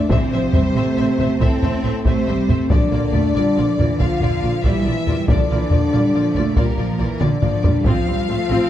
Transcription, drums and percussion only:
0.10 taiko loud
0.53 taiko low medium
1.19 taiko low soft
1.41 taiko medium
1.62 taiko low soft
2.05 taiko medium
2.48 taiko low soft
2.70 taiko medium
3.14 taiko low medium
3.79 taiko low soft
3.99 taiko medium
4.21 taiko low soft
4.64 taiko medium
5.07 taiko low soft
5.28 taiko medium
5.70 taiko low medium
6.35 taiko low soft
6.56 taiko medium
6.78 taiko low soft
7.21 taiko mid medium
7.42 taiko low-mid medium
7.64 taiko low medium
7.84 taiko medium

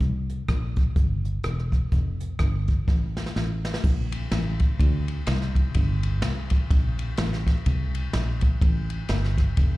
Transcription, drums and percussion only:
0.00 kick loud
0.00 closed hi-hat medium
0.30 closed hi-hat medium
0.49 kick medium
0.49 cross-stick loud
0.49 closed hi-hat medium
0.76 kick medium
0.76 closed hi-hat medium
0.96 kick loud
0.96 closed hi-hat medium
1.25 closed hi-hat medium
1.43 cross-stick medium
1.43 closed hi-hat medium
1.59 cross-stick soft
1.72 kick medium
1.72 cross-stick soft
1.72 closed hi-hat medium
1.92 kick loud
1.92 closed hi-hat medium
2.20 closed hi-hat medium
2.39 kick medium
2.39 cross-stick loud
2.39 closed hi-hat medium
2.68 kick medium
2.68 closed hi-hat medium
2.88 kick loud
2.88 snare medium
3.17 snare medium
3.26 snare medium
3.36 snare medium
3.65 snare medium
3.74 snare medium
3.84 kick loud
3.84 crash medium
4.12 ride bell medium
4.31 snare loud
4.31 ride bell medium
4.60 kick medium
4.60 ride bell medium
4.80 kick loud
4.80 ride bell medium
5.08 ride bell medium
5.27 snare loud
5.27 ride bell medium
5.42 snare soft
5.55 kick medium
5.55 ride bell medium
5.74 kick loud
5.74 ride bell medium
6.03 ride bell medium
6.22 snare loud
6.22 ride bell medium
6.50 kick medium
6.50 ride bell medium
6.71 kick loud
6.71 ride bell medium
6.99 ride bell medium
7.17 snare loud
7.17 ride bell medium
7.33 snare soft
7.47 kick medium
7.47 snare soft
7.47 ride bell medium
7.66 kick loud
7.66 ride bell medium
7.95 ride bell medium
8.13 snare loud
8.13 ride bell medium
8.41 kick medium
8.41 ride bell medium
8.62 kick loud
8.62 ride bell medium
8.90 ride bell medium
9.09 snare loud
9.09 ride bell medium
9.24 snare soft
9.38 kick medium
9.38 snare soft
9.38 ride bell medium
9.57 kick loud
9.57 ride bell medium

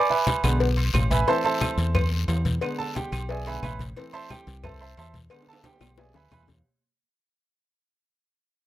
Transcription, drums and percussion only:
0.10 high conga soft
0.27 cowbell medium
0.27 high conga loud
0.27 low timbale medium
0.27 low agogo medium
0.27 short guiro medium
0.44 cowbell medium
0.44 high conga soft
0.44 low agogo loud
0.44 short guiro medium
0.44 claves medium
0.60 cowbell loud
0.60 high conga soft
0.60 long guiro medium
0.77 cowbell medium
0.77 high conga soft
0.77 low agogo medium
0.94 cowbell medium
0.94 high conga medium
0.94 low timbale medium
0.94 low agogo loud
0.94 short guiro medium
0.94 claves medium
1.11 cowbell medium
1.11 high conga medium
1.11 short guiro medium
1.28 cowbell loud
1.28 high conga soft
1.28 low agogo medium
1.28 long guiro medium
1.44 cowbell medium
1.44 high conga soft
1.44 low agogo medium
1.61 cowbell medium
1.61 high conga medium
1.61 low timbale medium
1.61 low agogo loud
1.61 short guiro medium
1.61 claves medium
1.78 cowbell medium
1.78 high conga soft
1.78 short guiro medium
1.95 cowbell loud
1.95 high conga soft
1.95 low conga medium
1.95 low agogo loud
1.95 long guiro medium
1.95 claves medium
2.12 high conga soft
2.28 cowbell medium
2.28 high conga soft
2.28 low timbale medium
2.28 low agogo medium
2.28 short guiro medium
2.45 cowbell medium
2.45 high conga medium
2.45 short guiro medium
2.61 cowbell loud
2.61 high conga soft
2.61 low agogo loud
2.61 long guiro medium
2.61 claves medium
2.80 high conga soft
2.95 cowbell medium
2.95 high conga loud
2.95 low timbale medium
2.95 low agogo medium
2.95 short guiro medium
3.12 cowbell medium
3.12 high conga soft
3.12 low agogo loud
3.12 short guiro medium
3.12 claves medium
3.29 cowbell loud
3.29 high conga soft
3.29 long guiro medium
3.46 cowbell medium
3.46 high conga soft
3.46 low agogo medium
3.63 cowbell medium
3.63 high conga medium
3.63 low timbale medium
3.63 low agogo loud
3.63 short guiro medium
3.63 claves medium
3.79 cowbell medium
3.79 high conga medium
3.79 short guiro medium
3.96 cowbell loud
3.96 high conga soft
3.96 low agogo medium
3.96 long guiro medium
4.13 cowbell medium
4.13 high conga soft
4.13 low agogo medium
4.30 cowbell medium
4.30 high conga loud
4.30 low timbale medium
4.30 low agogo loud
4.30 short guiro medium
4.30 claves medium
4.47 cowbell medium
4.47 high conga soft
4.47 short guiro medium
4.64 cowbell loud
4.64 high conga soft
4.64 low conga medium
4.64 low agogo loud
4.64 long guiro medium
4.64 claves medium
4.97 cowbell medium
4.97 high conga soft
4.97 low timbale medium
4.97 low agogo medium
4.97 short guiro medium
5.14 cowbell medium
5.14 high conga medium
5.14 short guiro medium
5.30 cowbell loud
5.30 high conga soft
5.30 high timbale medium
5.30 low agogo loud
5.30 long guiro medium
5.30 claves medium
5.42 high timbale medium
5.47 high conga soft
5.53 high timbale loud
5.64 cowbell medium
5.64 high conga loud
5.64 high timbale loud
5.64 low agogo medium
5.64 short guiro medium
5.76 low timbale medium
5.80 cowbell medium
5.80 high bongo loud
5.80 high conga soft
5.80 low agogo loud
5.80 short guiro medium
5.80 claves medium
5.87 low timbale medium
5.97 cowbell loud
5.97 high bongo loud
5.97 high conga soft
5.97 low timbale loud
5.97 long guiro medium
6.09 low timbale medium
6.14 cowbell medium
6.14 low bongo loud
6.14 high conga soft
6.14 low agogo medium
6.21 low timbale medium
6.31 cowbell medium
6.31 low bongo medium
6.31 high conga medium
6.31 low timbale loud
6.31 low agogo loud
6.31 short guiro medium
6.31 claves medium
6.43 low timbale medium
6.48 cowbell medium
6.48 low bongo medium
6.48 high conga medium
6.48 short guiro medium
6.54 low timbale medium

